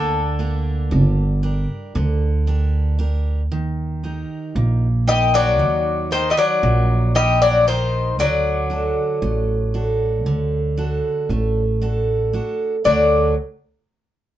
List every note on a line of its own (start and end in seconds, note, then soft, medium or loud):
0.00 0.94 D2 medium
0.00 0.88 D3 medium
0.00 1.41 D3 medium
0.00 0.19 A#3 medium
0.00 0.19 D4 soft
0.00 0.19 G4 soft
0.00 1.40 A4 medium
0.39 1.23 A#3 medium
0.39 1.22 D4 medium
0.39 1.23 G4 soft
0.91 1.65 G1 medium
0.91 1.92 G3 medium
1.43 2.27 D4 medium
1.43 2.27 G4 soft
1.43 2.27 A#4 medium
1.95 3.51 D2 loud
1.95 2.96 D3 medium
2.47 2.98 D4 medium
2.47 2.98 G4 soft
2.47 2.98 A#4 soft
2.99 3.41 D4 medium
2.99 3.41 G4 soft
2.99 3.41 A#4 medium
3.51 4.24 D#2 medium
3.51 4.52 D#3 medium
4.04 4.87 D#4 soft
4.04 4.87 G4 soft
4.04 4.87 A#4 soft
4.55 5.59 A#1 medium
4.55 5.56 A#3 medium
5.07 5.32 G3 medium
5.07 5.90 D#4 soft
5.07 5.91 A#4 medium
5.07 5.35 D#5 medium
5.07 5.91 G5 soft
5.34 6.08 F#3 medium
5.34 6.12 D5 loud
5.59 6.32 D#2 loud
5.59 6.60 D#3 medium
6.11 6.29 D#3 medium
6.11 6.94 D#4 soft
6.11 6.95 A#4 medium
6.11 6.29 C5 medium
6.11 6.94 G5 soft
6.30 6.37 G3 medium
6.30 6.38 D#5 medium
6.37 7.11 F#3 medium
6.37 7.12 D5 medium
6.63 8.18 A#1 loud
6.63 7.64 A#3 medium
7.15 7.39 G3 medium
7.15 7.66 D#4 soft
7.15 7.66 G4 soft
7.15 7.67 A#4 medium
7.15 7.40 D#5 loud
7.42 7.66 F#3 medium
7.42 7.66 D5 medium
7.67 8.16 D#3 medium
7.67 8.09 D#4 medium
7.67 8.09 G4 soft
7.67 8.09 A#4 medium
7.67 8.16 C5 medium
8.18 8.91 D2 medium
8.18 9.19 D3 medium
8.18 11.78 F#3 medium
8.18 11.78 D5 medium
8.70 9.53 D4 soft
8.70 9.53 F#4 soft
8.70 9.54 A4 soft
9.22 10.26 A1 medium
9.22 10.23 A3 medium
9.74 10.57 D4 medium
9.74 10.57 F#4 soft
9.74 10.57 A4 medium
10.26 10.98 D2 medium
10.26 11.27 D3 medium
10.77 11.60 D4 medium
10.77 11.61 F#4 soft
10.77 11.61 A4 medium
11.29 12.38 A1 medium
11.29 12.30 A3 medium
11.81 12.32 D4 soft
11.81 12.33 F#4 soft
11.81 12.33 A4 medium
12.33 12.75 D4 soft
12.33 12.75 F#4 soft
12.33 12.75 A4 medium
12.84 13.33 D2 medium
12.84 13.33 D3 medium
12.84 13.34 F#3 medium
12.84 13.33 A3 medium
12.84 13.33 D4 soft
12.84 13.34 F#4 medium
12.84 13.34 A4 medium
12.84 13.33 D5 medium